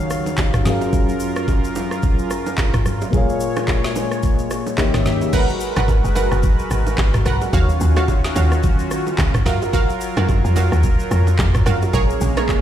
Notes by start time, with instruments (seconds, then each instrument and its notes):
Already playing: analog synth pad D#2 C#3 F#3 F5, grand piano D#3 D#4 F#4 C#5 F5
0.10 cross-stick, shaker
0.26 low bongo, shaker
0.38 kick, clap, high bongo, shaker
0.54 kick, cross-stick, mid tom, low bongo, shaker
0.63 analog synth pad F#2 F4 A#4, grand piano F#3 C#4 G#4, snare, mid tom, low conga, shaker
0.68 grand piano A#4 F5
0.81 high bongo, shaker
0.93 kick, low conga, shaker
1.09 shaker
1.20 shaker
1.36 cross-stick, shaker
1.48 kick, high bongo, shaker
1.64 shaker
1.76 low bongo, shaker
1.91 cross-stick, shaker
2.03 kick, low conga, shaker
2.19 shaker
2.31 cross-stick, shaker
2.46 low bongo, shaker
2.58 kick, clap, high bongo, shaker
2.74 kick, cross-stick, mid tom, low bongo, shaker
2.86 cross-stick, mid tom, low conga, shaker
3.01 high bongo, shaker
3.10 grand piano A#2 A#3 G#4, analog synth pad A#2 G#3 C#5, kick, low conga, shaker
3.15 grand piano C#5 F5
3.29 shaker
3.40 shaker
3.56 cross-stick, low bongo, shaker
3.68 kick, clap, high bongo, shaker
3.84 snare, shaker
3.96 low bongo, shaker
4.12 cross-stick, shaker
4.23 kick, low conga, shaker
4.39 shaker
4.51 cross-stick, high bongo, shaker
4.66 low bongo, shaker
4.77 analog synth pad D#2 C#3 G4 E5, grand piano D#3 A#3 G4 C#5 E5, kick, clap, high bongo, shaker
4.94 kick, cross-stick, snare, mid tom, low bongo, shaker
5.06 snare, mid tom, low conga, shaker
5.21 high bongo, shaker
5.33 analog synth pad G#3 F#4 A#4 B4, synth pluck A#4 B4 F#5, kick, crash, low conga, shaker
5.49 shaker
5.60 shaker
5.76 log drum bass G#1, synth pluck A#4 B4 F#5, cross-stick, low bongo, shaker
5.88 kick, high bongo, shaker
6.04 log drum bass F#1, shaker
6.15 synth pluck A#4 B4 F#5, low bongo, shaker
6.32 log drum bass F#1, cross-stick, shaker
6.43 kick, low conga, shaker
6.59 shaker
6.71 log drum bass G#1, cross-stick, shaker
6.87 low bongo, shaker
6.98 log drum bass G#1, kick, clap, high bongo, shaker
7.14 kick, cross-stick, mid tom, low bongo, shaker
7.25 log drum bass B1, synth pluck A#4 B4 F#5, cross-stick, mid tom, low conga, shaker
7.41 high bongo, shaker
7.53 log drum bass D#2, analog synth pad D#3 C#4 F4 F#4, synth pluck F#4 C#5 F5, kick, low conga, shaker
7.69 shaker
7.80 log drum bass D#2, shaker
7.96 synth pluck F#4 C#5 F5, cross-stick, low bongo, shaker
8.08 kick, high bongo, shaker
8.24 snare, shaker
8.36 log drum bass D#2, synth pluck F#4 C#5 F5, low bongo, shaker
8.52 cross-stick, shaker
8.63 kick, low conga, shaker
8.79 shaker
8.91 cross-stick, shaker
9.07 low bongo, shaker
9.18 log drum bass C#2, kick, clap, high bongo, shaker
9.34 kick, cross-stick, mid tom, low bongo, shaker
9.46 log drum bass F#2, analog synth pad F#3 A#4, synth pluck F#4 A#4 F5, snare, mid tom, low conga, shaker
9.62 high bongo, shaker
9.73 synth pluck F#4 A#4 F5, kick, low conga, shaker
9.90 shaker
10.01 shaker
10.17 log drum bass F#2, synth pluck F#4 A#4 F5, cross-stick, low bongo, shaker
10.29 kick, high bongo, shaker
10.45 log drum bass F2, shaker
10.56 synth pluck F#4 A#4 F5, low bongo, shaker
10.72 log drum bass D#2, cross-stick, shaker
10.83 kick, low conga, shaker
10.99 shaker
11.11 log drum bass F2, cross-stick, shaker
11.27 low bongo, shaker
11.39 log drum bass F2, kick, clap, high bongo, shaker
11.54 kick, cross-stick, mid tom, low bongo, shaker
11.66 log drum bass F#2, synth pluck F#4 A#4 F5, cross-stick, mid tom, low conga, shaker
11.82 high bongo, shaker
11.93 log drum bass A#1, analog synth pad G#3 A#3 C#4, synth pluck G#4 A#4 C#5, kick, low conga, shaker
12.10 shaker
12.21 log drum bass A#1, shaker
12.37 synth pluck G#4 A#4 C#5, cross-stick, low bongo, shaker
12.49 kick, clap, high bongo, shaker